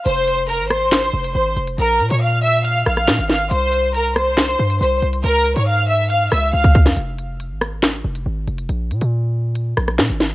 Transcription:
<<
  \new Staff \with { instrumentName = "Violin section" } { \time 4/4 \key f \minor \tempo 4 = 139 <c'' c'''>4 <bes' bes''>8 <c'' c'''>4. <c'' c'''>8 r8 | <bes' bes''>8. <des'' des'''>16 <f'' f'''>8 <e'' e'''>8 <f'' f'''>8 <f'' f'''>4 <f'' f'''>8 | <c'' c'''>4 <bes' bes''>8 <c'' c'''>4. <c'' c'''>8 r8 | <bes' bes''>8. <des'' des'''>16 <f'' f'''>8 <e'' e'''>8 <f'' f'''>8 <e'' e'''>8 <f'' f'''>8 r8 |
r1 | r1 | }
  \new Staff \with { instrumentName = "808-style bass" } { \clef bass \time 4/4 \key f \minor f,,4~ f,,16 aes,,4~ aes,,16 f,,8 aes,,8 f,,8 | bes,,8 bes,16 bes,4.~ bes,16 bes,,8 bes,16 aes,,8. | c,2~ c,8 g,8 c,8 c,8 | des,8. aes,4.~ aes,16 des,8 des,8. f,16 |
f,,4~ f,,16 aes,,4~ aes,,16 f,,8 aes,,8 f,,8 | bes,,8 bes,16 bes,4.~ bes,16 bes,,8 bes,16 aes,,8. | }
  \new DrumStaff \with { instrumentName = "Drums" } \drummode { \time 4/4 hh8 hh8 hh8 <hh ss>8 <hc hh sn>8. hh16 r8 hh16 hh16 | hh8 hh16 hh16 r4 hh8 ss16 ss16 <hc sn>16 hh16 <hho sn>8 | hh8 hh8 hh8 <hh ss>8 <hc hh sn>8. hh16 r8 hh16 hh16 | hh8 hh16 hh16 r4 hh8 ss8 r16 <hh bd>16 <hh bd>16 sn16 |
hh8 hh8 hh8 <hh ss>8 <hc hh sn>8. hh16 r8 hh16 hh16 | hh8 hh16 hh16 r4 hh8 ss16 ss16 <hc sn>16 hh16 <hho sn>8 | }
>>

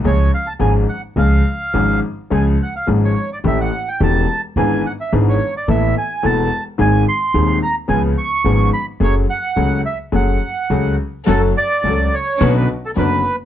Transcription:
<<
  \new Staff \with { instrumentName = "Bandoneon" } { \time 4/4 \key fis \minor \tempo 4 = 107 cis''8 eis''16 a''16 gis''8 fis''8 eis''4. r8 | gis''8 fis''16 eis''8 cis''8 d''16 e''16 fis''8 g''16 a''8. r16 | gis''8 fis''16 e''8 cis''8 d''16 e''8 gis''8 a''8. r16 | gis''8 bis''4 ais''8 gis''8 cis'''4 b''8 |
cis''8 fis''4 e''8 fis''4. r8 | a'8 d''4 cis''8. b'8 a'16 b'8. r16 | }
  \new Staff \with { instrumentName = "String section" } { \time 4/4 \key fis \minor r1 | r1 | r1 | r1 |
r1 | <cis' fis' a'>8 r8 <cis' fis' a'>8 r8 <cis' d' b'>8 r8 <cis' d' b'>8 r8 | }
  \new Staff \with { instrumentName = "Grand piano" } { \clef bass \time 4/4 \key fis \minor <cis, cis eis gis cis' gis'>8 r8 <gis,, gis, eis gis cis' gis'>8 r8 <cis, cis eis gis cis' gis'>8 r8 <gis,, gis, eis gis cis' gis'>8 r8 | <cis, cis eis gis cis' gis'>8 r8 <gis,, gis, eis gis cis' gis'>8 r8 <a,, a, e a cis' g'>8 r8 <e,, e, e a cis' g'>8 r8 | <gis,, gis, e b d' gis'>8 r8 <gis,, gis, e b d' gis'>8 r8 <a,, a, e a b a'>8 r8 <e,, e, e a b a'>8 r8 | <gis,, gis, dis gis bis gis'>8 r8 <dis,, dis, dis gis bis gis'>8 r8 <cis, cis eis b cis' gis'>8 r8 <gis,, gis, eis b cis' gis'>8 r8 |
<fis, fis a cis' gis'>8 r8 <cis, cis fis a cis' gis'>8 r8 <fis, fis a cis' gis'>8 r8 <cis, cis fis a cis' gis'>8 r8 | <fis, fis a cis' a'>8 r8 <cis, cis fis a cis' a'>8 r8 <b,, b, d b cis' fis'>8 r8 <fis,, fis, d b cis' fis'>8 r8 | }
  \new Staff \with { instrumentName = "Upright bass" } { \clef bass \time 4/4 \key fis \minor cis,8 r8 gis,,8 r8 cis,8 r8 gis,,8 r8 | cis,8 r8 gis,,8 r8 a,,8 r8 e,,8 r8 | gis,,8 r8 gis,,8 r8 a,,8 r8 e,,8 r8 | gis,,8 r8 dis,8 r8 cis,8 r8 gis,,8 r8 |
fis,,8 r8 cis,8 r8 fis,,8 r8 cis,8 r8 | fis,,8 r8 cis,8 r8 b,,8 r8 fis,,8 r8 | }
>>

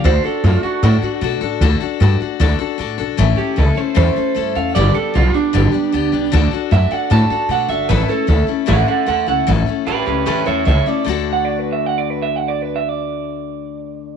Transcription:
<<
  \new Staff \with { instrumentName = "Clean electric guitar" } { \time 4/4 \key d \major \tempo 4 = 152 c''8 a'8 f'8 fis'2~ fis'8~ | fis'8 r2. r8 | r8 g'8 a'8 c''8 c''4. f''8 | d''8 a'8 f'8 d'2~ d'8~ |
d'8 r8 e''8 fis''8 a''4 fis''8 e''8 | b'8 a'4 r8 <a' fis''>8 <a' fis''>8 <a' fis''>8 fis''8 | r4 <g' b'>8 <g' b'>8 <g' b'>8 <cis'' e''>8 <cis'' e''>8 d''8 | \tuplet 3/2 { r4 fis''8 d''8 b'8 e''8 fis''8 d''8 b'8 e''8 fis''8 d''8 } |
\tuplet 3/2 { b'8 e''8 d''8~ } d''2. | }
  \new Staff \with { instrumentName = "Steel-string acoustic guitar" } { \time 4/4 \key d \major <d a d' fis' a'>8 <d' fis' a'>8 <a d' fis' a'>8 <d' fis' a'>8 <d a d' fis' a'>8 <d' fis' a'>8 <a d' fis' a'>8 <d' fis' a'>8 | <d a d' fis' a'>8 <d' fis' a'>8 <a d' fis' a'>8 <d' fis' a'>8 <d a d' fis' a'>8 <d' fis' a'>8 <a d' fis' a'>8 <d' fis' a'>8 | <a, e a cis' e' a'>8 <a cis' e' a'>8 <a cis' e' a'>8 <a cis' e' a'>8 <a, e a cis' e' a'>8 <a cis' e' a'>8 <a cis' e' a'>8 <a cis' e' a'>8 | <g, d g b d' g'>8 <g b d' g'>8 <g b d' g'>8 <g b d' g'>8 <g, d g b d' g'>8 <g b d' g'>8 <g b d' g'>8 <g b d' g'>8 |
<d a d' fis' a'>8 <d' fis' a'>8 <a d' fis' a'>8 <d' fis' a'>8 <d a d' fis' a'>8 <d' fis' a'>8 <a d' fis' a'>8 <d' fis' a'>8 | <a, e a cis' e' a'>8 <a cis' e' a'>8 <a cis' e' a'>8 <a cis' e' a'>8 <a, e a cis' e' a'>8 <a cis' e' a'>8 <a cis' e' a'>8 <a cis' e' a'>8 | <a, e a cis' e' a'>8 <a cis' e' a'>8 <a cis' e' a'>8 <a cis' e' a'>8 <a, e a cis' e' a'>8 <a cis' e' a'>8 <a cis' e' a'>8 <a cis' e' a'>8 | <d a d' fis' a'>1~ |
<d a d' fis' a'>1 | }
  \new Staff \with { instrumentName = "Upright bass" } { \clef bass \time 4/4 \key d \major d,8 r8 fis,8 r8 a,8 r8 b,8 a,8 | d,8 r8 g,8 r8 d,8 r8 a,8 b,,8 | a,,8 r8 cis,8 r8 e,8 r8 g,8 e,8 | g,,8 r8 b,,8 r8 g,,8 r8 d,8 b,,8 |
d,8 r8 fis,8 r8 a,8 r8 b,8 g,,8 | a,,8 r8 d,8 r8 a,,8 r8 e,8 cis,8 | a,,8 r8 a,,8 cis,8 e,8 e,8 cis,8 r8 | d,1~ |
d,1 | }
>>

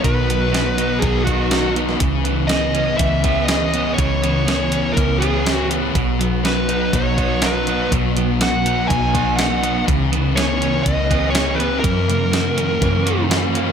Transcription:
<<
  \new Staff \with { instrumentName = "Lead electric guitar" } { \time 4/4 \key b \major \tempo 4 = 122 b'2 gis'8 fis'4 r8 | r4 dis''4 e''4 dis''4 | cis''2 ais'8 gis'4 r8 | r4 b'4 cis''4 b'4 |
r4 fis''4 gis''4 fis''4 | r4 cis''4 dis''4 cis''8 b'8 | ais'2. r4 | }
  \new Staff \with { instrumentName = "Clean electric guitar" } { \time 4/4 \key b \major <dis b>8 b8 fis'8 dis'8 dis8 b8 dis8 b8 | e8 b8 gis'8 cis'8 e8 b8 e8 b8 | e8 b8 gis'8 cis'8 e8 b8 e8 b8 | fis8 b8 fis'8 dis'8 fis8 b8 fis8 b8 |
fis8 b8 fis'8 dis'8 fis8 b8 fis8 b8 | e8 b8 gis'8 cis'8 e8 b8 e8 b8 | e8 ais8 fis'8 cis'8 e8 ais8 e8 ais8 | }
  \new Staff \with { instrumentName = "Distorted electric guitar" } { \time 4/4 \key b \major <b, b dis' fis'>8 fis8 b8 fis8 b8 dis'8 fis'8 dis'8 | cis8 e8 b8 e8 b8 cis'8 gis'8 cis'8 | cis8 e8 b8 e8 b8 cis'8 gis'8 cis'8 | b,8 fis8 b8 fis8 b8 dis'8 fis'8 dis'8 |
b,8 fis8 b8 fis8 b8 dis'8 fis'8 dis'8 | cis8 e8 b8 e8 b8 cis'8 gis'8 cis'8 | fis,8 cis8 ais8 e8 ais8 cis'8 fis'8 cis'8 | }
  \new Staff \with { instrumentName = "Overdriven electric guitar" } { \time 4/4 \key b \major <b, b dis' fis'>8 fis8 fis8 b8 dis'8 fis'8 dis'8 b8 | cis8 e8 e8 b8 cis'8 gis'8 cis'8 b8 | cis8 e8 e8 b8 cis'8 gis'8 cis'8 b8 | b,8 fis8 fis8 b8 dis'8 fis'8 dis'8 b8 |
b,8 fis8 fis8 b8 dis'8 fis'8 dis'8 b8 | cis8 e8 e8 b8 cis'8 gis'8 cis'8 b8 | fis,8 cis8 e8 ais8 cis'8 fis'8 cis'8 ais8 | }
  \new Staff \with { instrumentName = "Fingered electric bass" } { \clef bass \time 4/4 \key b \major b,,2 b,,2 | cis,2 cis,2 | cis,2 cis,2 | b,,2 b,,2 |
b,,2 b,,2 | cis,2 cis,2 | fis,2 fis,2 | }
  \new DrumStaff \with { instrumentName = "Drums" } \drummode { \time 4/4 <hh bd>8 hh8 <hh sn>8 hh8 <hh bd>8 <hh bd>8 <hh sn>8 hh16 sn16 | <hh bd>8 hh8 <hh sn>8 hh8 <hh bd>8 <hh bd>8 <hh sn>8 hh8 | <hh bd>8 hh8 <hh sn>8 hh8 <hh bd>8 hh8 <hh sn>8 hh8 | <hh bd>8 hh8 <hh sn>8 hh8 <hh bd>8 <hh bd>8 <hh sn>8 hh8 |
<hh bd>8 hh8 <hh sn>8 hh8 <hh bd>8 <hh bd>8 <hh sn>8 hh8 | <hh bd>8 hh8 <hh sn>8 hh8 <hh bd>8 <hh bd>8 <hh sn>8 hh8 | <hh bd>8 hh8 <hh sn>8 hh8 <hh bd>8 hh8 <hh sn>8 hh8 | }
>>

